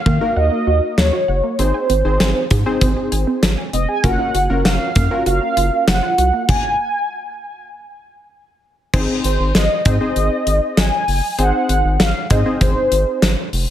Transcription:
0.00 0.32 F5 loud
0.06 0.19 D#3 loud
0.06 0.18 A#3 medium
0.06 kick loud
0.21 0.98 A#3 medium
0.21 0.98 D#4 medium
0.21 0.98 F#4 medium
0.21 0.98 A#4 medium
0.36 0.50 D#2 loud
0.36 0.99 D#5 loud
0.36 0.48 F#5 medium
0.52 0.64 A#3 medium
0.67 0.80 D#2 medium
0.67 0.79 F#4 medium
0.98 1.11 D#2 loud
0.98 1.61 C#5 medium
0.98 snare loud
1.13 1.25 F#4 medium
1.28 1.41 F#1 medium
1.28 1.40 F#5 medium
1.44 1.56 A#3 medium
1.59 1.72 G#1 loud
1.59 1.88 C4 medium
1.59 1.88 D#4 medium
1.59 1.88 G#4 medium
1.59 2.77 C5 medium
1.59 1.88 C5 medium
1.59 closed hi-hat medium
1.74 1.86 G#5 medium
1.90 2.03 G#1 loud
1.90 2.01 C4 medium
1.90 closed hi-hat medium
2.05 2.18 G#1 loud
2.05 2.43 C4 medium
2.05 2.43 D#4 medium
2.05 2.43 G#4 medium
2.05 2.43 C5 medium
2.20 2.33 G#1 loud
2.20 2.32 G#5 medium
2.20 snare loud
2.20 closed hi-hat medium
2.51 2.64 G#2 loud
2.51 2.63 G#4 medium
2.51 kick loud
2.51 closed hi-hat medium
2.66 3.43 C4 medium
2.66 3.43 D#4 medium
2.66 3.43 G#4 medium
2.66 3.43 C5 loud
2.66 2.78 G#5 medium
2.81 2.95 G#1 loud
2.81 2.93 C4 medium
2.81 kick medium
2.81 closed hi-hat medium
2.97 3.09 G#4 medium
3.12 3.25 G#1 loud
3.12 3.24 G#5 medium
3.12 closed hi-hat medium
3.27 3.39 C4 medium
3.43 3.56 G#1 loud
3.43 snare loud
3.43 closed hi-hat medium
3.58 3.70 G#5 medium
3.73 3.86 F1 medium
3.73 3.85 C4 medium
3.73 3.87 D#5 medium
3.73 closed hi-hat medium
3.88 4.00 G#4 medium
3.88 4.03 G#5 loud
4.04 4.17 F#1 loud
4.04 4.16 A#3 loud
4.04 4.33 C#4 medium
4.04 4.33 F4 medium
4.04 4.33 F#4 medium
4.04 4.33 A#4 medium
4.04 4.67 F#5 loud
4.04 kick loud
4.04 closed hi-hat medium
4.19 4.31 F4 medium
4.34 4.48 F#1 loud
4.34 4.46 F#4 medium
4.34 closed hi-hat medium
4.50 4.63 F#1 loud
4.50 4.62 A#3 medium
4.50 4.88 C#4 medium
4.50 4.88 F4 medium
4.50 4.88 F#4 medium
4.50 4.88 A#4 medium
4.65 4.78 F#1 loud
4.65 5.22 F5 loud
4.65 snare loud
4.65 closed hi-hat medium
4.95 5.09 F#2 medium
4.95 5.08 A#3 medium
4.95 kick loud
4.95 closed hi-hat medium
5.11 5.88 C#4 medium
5.11 5.88 F4 medium
5.11 5.88 F#4 medium
5.11 5.88 A#4 medium
5.26 5.39 F#1 loud
5.26 5.38 F#4 medium
5.26 5.84 F5 loud
5.26 closed hi-hat medium
5.42 5.54 A#3 medium
5.57 5.70 F#1 loud
5.57 5.69 F4 medium
5.57 closed hi-hat medium
5.88 6.01 F#1 loud
5.88 snare loud
5.88 closed hi-hat medium
6.03 6.15 F4 medium
6.18 6.31 C2 medium
6.18 6.30 F#4 medium
6.18 closed hi-hat medium
6.33 6.45 A#3 medium
6.49 7.67 G#5 loud
6.49 kick loud
6.49 crash medium
8.94 9.07 G#1 loud
8.94 9.51 C4 medium
8.94 9.51 D#4 medium
8.94 9.51 G#4 medium
8.94 9.51 C5 loud
8.94 kick loud
8.94 crash medium
9.24 9.37 G#1 loud
9.24 9.53 C5 medium
9.24 closed hi-hat medium
9.40 9.53 G#1 loud
9.55 9.68 G#1 loud
9.55 9.83 D#5 loud
9.55 snare loud
9.55 closed hi-hat medium
9.85 9.99 G#2 loud
9.85 9.95 C4 medium
9.85 9.95 D#4 medium
9.85 9.95 G#4 medium
9.85 9.95 C5 medium
9.85 10.80 D#5 loud
9.85 kick loud
9.85 closed hi-hat medium
10.01 10.78 C4 medium
10.01 10.78 D#4 medium
10.01 10.78 G#4 medium
10.01 10.78 C5 medium
10.16 10.29 G#1 loud
10.16 closed hi-hat medium
10.47 10.60 G#1 loud
10.47 closed hi-hat medium
10.77 10.90 G#1 loud
10.77 11.40 G#5 loud
10.77 snare loud
10.77 closed hi-hat medium
11.08 11.21 F#1 medium
11.08 open hi-hat medium
11.38 11.52 G#1 loud
11.38 11.96 C4 medium
11.38 11.96 D#4 medium
11.38 11.96 G#4 medium
11.38 11.96 C5 medium
11.38 12.02 F#5 loud
11.38 closed hi-hat medium
11.69 11.82 G#1 loud
11.69 closed hi-hat medium
11.84 11.98 G#1 loud
12.00 12.13 G#1 loud
12.00 12.28 F5 loud
12.00 snare loud
12.00 closed hi-hat medium
12.30 12.44 G#2 medium
12.30 12.40 C4 medium
12.30 12.40 D#4 medium
12.30 12.40 G#4 medium
12.30 12.40 C5 medium
12.30 12.59 D#5 medium
12.30 kick loud
12.30 closed hi-hat medium
12.46 13.22 C4 medium
12.46 13.22 D#4 medium
12.46 13.22 G#4 medium
12.46 13.22 C5 medium
12.61 12.74 G#1 loud
12.61 13.49 C5 medium
12.61 kick medium
12.61 closed hi-hat medium
12.92 13.05 G#1 loud
12.92 closed hi-hat medium
13.22 13.35 G#1 loud
13.22 snare loud
13.22 closed hi-hat medium
13.53 13.66 F1 loud
13.53 open hi-hat medium

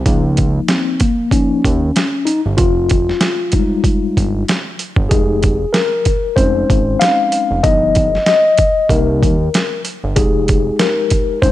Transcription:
0.06 0.60 C#2 loud
0.06 0.97 F3 medium
0.06 0.97 A#3 soft
0.06 0.97 D#4 medium
0.06 kick loud
0.06 closed hi-hat medium
0.37 kick medium
0.37 closed hi-hat medium
0.68 1.01 C4 medium
0.68 snare loud
0.68 closed hi-hat medium
1.00 1.30 A#3 medium
1.00 kick medium
1.00 closed hi-hat medium
1.31 1.61 F3 soft
1.31 1.61 A#3 soft
1.31 2.30 C#4 medium
1.31 1.61 D#4 medium
1.31 kick medium
1.31 closed hi-hat medium
1.64 1.91 D#2 medium
1.64 kick medium
1.64 closed hi-hat medium
1.96 snare loud
1.96 closed hi-hat medium
2.25 2.40 D#4 medium
2.25 closed hi-hat medium
2.46 2.57 G1 medium
2.57 3.13 F1 loud
2.57 4.43 F4 medium
2.57 kick loud
2.57 closed hi-hat medium
2.89 kick medium
2.89 closed hi-hat medium
3.09 snare soft
3.21 snare loud
3.21 closed hi-hat medium
3.52 4.44 G3 medium
3.52 4.44 G#3 medium
3.52 4.44 D#4 medium
3.52 kick medium
3.52 closed hi-hat medium
3.84 kick medium
3.84 closed hi-hat medium
4.17 4.44 G1 medium
4.17 kick medium
4.17 closed hi-hat medium
4.48 snare loud
4.48 closed hi-hat medium
4.79 closed hi-hat medium
4.96 5.09 G1 medium
4.96 kick medium
5.09 5.65 F1 loud
5.09 5.55 G#3 soft
5.09 5.55 D#4 medium
5.09 5.55 G4 soft
5.09 5.75 G#4 medium
5.09 kick loud
5.09 closed hi-hat medium
5.43 kick medium
5.43 closed hi-hat medium
5.73 6.39 A#4 medium
5.73 snare loud
5.73 closed hi-hat medium
6.05 kick medium
6.05 closed hi-hat medium
6.36 6.64 F1 medium
6.36 7.59 G#3 medium
6.36 7.60 C4 soft
6.36 7.60 C#4 medium
6.36 7.60 D#4 medium
6.36 7.02 C5 medium
6.36 kick medium
6.36 closed hi-hat medium
6.70 6.97 G#1 medium
6.70 kick medium
6.70 closed hi-hat medium
7.00 7.65 F5 loud
7.00 snare medium
7.00 closed hi-hat medium
7.32 closed hi-hat medium
7.51 7.62 F1 medium
7.63 8.18 G1 loud
7.63 8.08 F3 medium
7.63 8.08 B3 medium
7.63 8.09 D#4 medium
7.63 8.25 D#5 medium
7.63 kick loud
7.63 closed hi-hat medium
7.95 kick medium
7.95 closed hi-hat medium
8.15 snare soft
8.26 8.92 D#5 medium
8.26 snare loud
8.26 closed hi-hat medium
8.58 kick medium
8.58 closed hi-hat medium
8.89 9.24 C2 loud
8.89 9.34 G3 medium
8.89 9.34 A#3 soft
8.89 9.35 D#4 medium
8.89 9.81 A#4 medium
8.89 kick medium
8.89 closed hi-hat medium
9.23 9.49 D#2 medium
9.23 kick medium
9.23 closed hi-hat medium
9.54 snare loud
9.54 closed hi-hat medium
9.85 closed hi-hat medium
10.04 10.15 G1 medium
10.16 10.71 F1 loud
10.16 11.39 G#3 soft
10.16 11.39 D#4 medium
10.16 11.39 G4 medium
10.16 10.75 G#4 medium
10.16 kick loud
10.16 closed hi-hat medium
10.48 kick medium
10.48 closed hi-hat medium
10.79 11.39 A#4 medium
10.79 snare loud
10.79 closed hi-hat medium
11.10 kick medium
11.10 closed hi-hat medium
11.42 11.52 F1 loud
11.42 11.52 G#3 medium
11.42 11.52 C4 soft
11.42 11.52 C#4 medium
11.42 11.52 D#4 medium
11.42 11.52 C5 loud
11.42 kick medium
11.42 closed hi-hat medium

